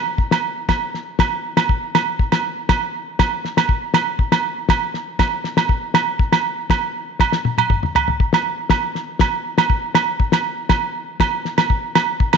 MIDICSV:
0, 0, Header, 1, 2, 480
1, 0, Start_track
1, 0, Tempo, 500835
1, 173, Time_signature, 4, 2, 24, 8
1, 11857, End_track
2, 0, Start_track
2, 0, Title_t, "Drums"
2, 175, Note_on_c, 9, 36, 79
2, 271, Note_off_c, 9, 36, 0
2, 300, Note_on_c, 9, 38, 63
2, 310, Note_on_c, 9, 68, 51
2, 396, Note_off_c, 9, 38, 0
2, 406, Note_off_c, 9, 68, 0
2, 659, Note_on_c, 9, 36, 81
2, 660, Note_on_c, 9, 38, 64
2, 660, Note_on_c, 9, 68, 52
2, 754, Note_off_c, 9, 36, 0
2, 756, Note_off_c, 9, 38, 0
2, 756, Note_off_c, 9, 68, 0
2, 905, Note_on_c, 9, 38, 22
2, 1000, Note_off_c, 9, 38, 0
2, 1138, Note_on_c, 9, 38, 64
2, 1140, Note_on_c, 9, 36, 85
2, 1149, Note_on_c, 9, 68, 57
2, 1234, Note_off_c, 9, 38, 0
2, 1236, Note_off_c, 9, 36, 0
2, 1244, Note_off_c, 9, 68, 0
2, 1503, Note_on_c, 9, 38, 67
2, 1506, Note_on_c, 9, 68, 58
2, 1599, Note_off_c, 9, 38, 0
2, 1602, Note_off_c, 9, 68, 0
2, 1622, Note_on_c, 9, 36, 84
2, 1718, Note_off_c, 9, 36, 0
2, 1867, Note_on_c, 9, 38, 59
2, 1868, Note_on_c, 9, 68, 58
2, 1963, Note_off_c, 9, 38, 0
2, 1964, Note_off_c, 9, 68, 0
2, 2102, Note_on_c, 9, 36, 79
2, 2198, Note_off_c, 9, 36, 0
2, 2224, Note_on_c, 9, 68, 52
2, 2226, Note_on_c, 9, 38, 65
2, 2320, Note_off_c, 9, 68, 0
2, 2322, Note_off_c, 9, 38, 0
2, 2577, Note_on_c, 9, 38, 64
2, 2580, Note_on_c, 9, 36, 90
2, 2581, Note_on_c, 9, 68, 61
2, 2673, Note_off_c, 9, 38, 0
2, 2676, Note_off_c, 9, 36, 0
2, 2676, Note_off_c, 9, 68, 0
2, 3059, Note_on_c, 9, 38, 68
2, 3060, Note_on_c, 9, 36, 81
2, 3063, Note_on_c, 9, 68, 55
2, 3154, Note_off_c, 9, 38, 0
2, 3156, Note_off_c, 9, 36, 0
2, 3159, Note_off_c, 9, 68, 0
2, 3303, Note_on_c, 9, 38, 25
2, 3399, Note_off_c, 9, 38, 0
2, 3424, Note_on_c, 9, 38, 58
2, 3428, Note_on_c, 9, 68, 57
2, 3519, Note_off_c, 9, 38, 0
2, 3524, Note_off_c, 9, 68, 0
2, 3536, Note_on_c, 9, 36, 82
2, 3632, Note_off_c, 9, 36, 0
2, 3773, Note_on_c, 9, 38, 60
2, 3780, Note_on_c, 9, 68, 61
2, 3869, Note_off_c, 9, 38, 0
2, 3876, Note_off_c, 9, 68, 0
2, 4016, Note_on_c, 9, 36, 76
2, 4111, Note_off_c, 9, 36, 0
2, 4139, Note_on_c, 9, 38, 61
2, 4142, Note_on_c, 9, 68, 59
2, 4235, Note_off_c, 9, 38, 0
2, 4238, Note_off_c, 9, 68, 0
2, 4491, Note_on_c, 9, 38, 63
2, 4495, Note_on_c, 9, 36, 89
2, 4504, Note_on_c, 9, 68, 57
2, 4587, Note_off_c, 9, 38, 0
2, 4591, Note_off_c, 9, 36, 0
2, 4600, Note_off_c, 9, 68, 0
2, 4736, Note_on_c, 9, 38, 24
2, 4832, Note_off_c, 9, 38, 0
2, 4976, Note_on_c, 9, 36, 89
2, 4976, Note_on_c, 9, 38, 66
2, 4978, Note_on_c, 9, 68, 55
2, 5071, Note_off_c, 9, 36, 0
2, 5072, Note_off_c, 9, 38, 0
2, 5074, Note_off_c, 9, 68, 0
2, 5216, Note_on_c, 9, 38, 29
2, 5312, Note_off_c, 9, 38, 0
2, 5338, Note_on_c, 9, 38, 66
2, 5344, Note_on_c, 9, 68, 55
2, 5433, Note_off_c, 9, 38, 0
2, 5440, Note_off_c, 9, 68, 0
2, 5455, Note_on_c, 9, 36, 87
2, 5551, Note_off_c, 9, 36, 0
2, 5694, Note_on_c, 9, 38, 59
2, 5699, Note_on_c, 9, 68, 67
2, 5789, Note_off_c, 9, 38, 0
2, 5795, Note_off_c, 9, 68, 0
2, 5936, Note_on_c, 9, 36, 89
2, 6032, Note_off_c, 9, 36, 0
2, 6060, Note_on_c, 9, 38, 61
2, 6063, Note_on_c, 9, 68, 61
2, 6156, Note_off_c, 9, 38, 0
2, 6159, Note_off_c, 9, 68, 0
2, 6418, Note_on_c, 9, 36, 91
2, 6421, Note_on_c, 9, 38, 64
2, 6426, Note_on_c, 9, 68, 61
2, 6514, Note_off_c, 9, 36, 0
2, 6517, Note_off_c, 9, 38, 0
2, 6522, Note_off_c, 9, 68, 0
2, 6895, Note_on_c, 9, 38, 39
2, 6899, Note_on_c, 9, 36, 80
2, 6906, Note_on_c, 9, 68, 61
2, 6991, Note_off_c, 9, 38, 0
2, 6995, Note_off_c, 9, 36, 0
2, 7002, Note_off_c, 9, 68, 0
2, 7020, Note_on_c, 9, 38, 42
2, 7116, Note_off_c, 9, 38, 0
2, 7140, Note_on_c, 9, 48, 59
2, 7235, Note_off_c, 9, 48, 0
2, 7262, Note_on_c, 9, 48, 50
2, 7269, Note_on_c, 9, 68, 59
2, 7358, Note_off_c, 9, 48, 0
2, 7365, Note_off_c, 9, 68, 0
2, 7378, Note_on_c, 9, 47, 64
2, 7379, Note_on_c, 9, 36, 85
2, 7474, Note_off_c, 9, 47, 0
2, 7475, Note_off_c, 9, 36, 0
2, 7505, Note_on_c, 9, 45, 54
2, 7600, Note_off_c, 9, 45, 0
2, 7621, Note_on_c, 9, 43, 63
2, 7627, Note_on_c, 9, 68, 68
2, 7717, Note_off_c, 9, 43, 0
2, 7723, Note_off_c, 9, 68, 0
2, 7743, Note_on_c, 9, 43, 66
2, 7839, Note_off_c, 9, 43, 0
2, 7859, Note_on_c, 9, 36, 89
2, 7954, Note_off_c, 9, 36, 0
2, 7981, Note_on_c, 9, 38, 67
2, 7995, Note_on_c, 9, 68, 56
2, 8077, Note_off_c, 9, 38, 0
2, 8091, Note_off_c, 9, 68, 0
2, 8333, Note_on_c, 9, 38, 71
2, 8336, Note_on_c, 9, 36, 78
2, 8343, Note_on_c, 9, 68, 59
2, 8429, Note_off_c, 9, 38, 0
2, 8432, Note_off_c, 9, 36, 0
2, 8438, Note_off_c, 9, 68, 0
2, 8580, Note_on_c, 9, 38, 25
2, 8676, Note_off_c, 9, 38, 0
2, 8811, Note_on_c, 9, 38, 69
2, 8816, Note_on_c, 9, 36, 89
2, 8826, Note_on_c, 9, 68, 55
2, 8907, Note_off_c, 9, 38, 0
2, 8912, Note_off_c, 9, 36, 0
2, 8922, Note_off_c, 9, 68, 0
2, 9178, Note_on_c, 9, 38, 71
2, 9185, Note_on_c, 9, 68, 68
2, 9274, Note_off_c, 9, 38, 0
2, 9280, Note_off_c, 9, 68, 0
2, 9293, Note_on_c, 9, 36, 89
2, 9389, Note_off_c, 9, 36, 0
2, 9531, Note_on_c, 9, 38, 60
2, 9537, Note_on_c, 9, 68, 68
2, 9627, Note_off_c, 9, 38, 0
2, 9632, Note_off_c, 9, 68, 0
2, 9773, Note_on_c, 9, 36, 80
2, 9869, Note_off_c, 9, 36, 0
2, 9892, Note_on_c, 9, 38, 62
2, 9903, Note_on_c, 9, 68, 51
2, 9988, Note_off_c, 9, 38, 0
2, 9999, Note_off_c, 9, 68, 0
2, 10248, Note_on_c, 9, 38, 70
2, 10251, Note_on_c, 9, 68, 60
2, 10252, Note_on_c, 9, 36, 87
2, 10344, Note_off_c, 9, 38, 0
2, 10347, Note_off_c, 9, 68, 0
2, 10348, Note_off_c, 9, 36, 0
2, 10732, Note_on_c, 9, 36, 93
2, 10734, Note_on_c, 9, 38, 69
2, 10739, Note_on_c, 9, 68, 63
2, 10828, Note_off_c, 9, 36, 0
2, 10830, Note_off_c, 9, 38, 0
2, 10835, Note_off_c, 9, 68, 0
2, 10976, Note_on_c, 9, 38, 27
2, 11072, Note_off_c, 9, 38, 0
2, 11097, Note_on_c, 9, 38, 68
2, 11097, Note_on_c, 9, 68, 62
2, 11192, Note_off_c, 9, 68, 0
2, 11193, Note_off_c, 9, 38, 0
2, 11213, Note_on_c, 9, 36, 84
2, 11309, Note_off_c, 9, 36, 0
2, 11457, Note_on_c, 9, 38, 62
2, 11457, Note_on_c, 9, 68, 68
2, 11553, Note_off_c, 9, 38, 0
2, 11553, Note_off_c, 9, 68, 0
2, 11694, Note_on_c, 9, 36, 90
2, 11790, Note_off_c, 9, 36, 0
2, 11817, Note_on_c, 9, 68, 64
2, 11823, Note_on_c, 9, 38, 67
2, 11857, Note_off_c, 9, 38, 0
2, 11857, Note_off_c, 9, 68, 0
2, 11857, End_track
0, 0, End_of_file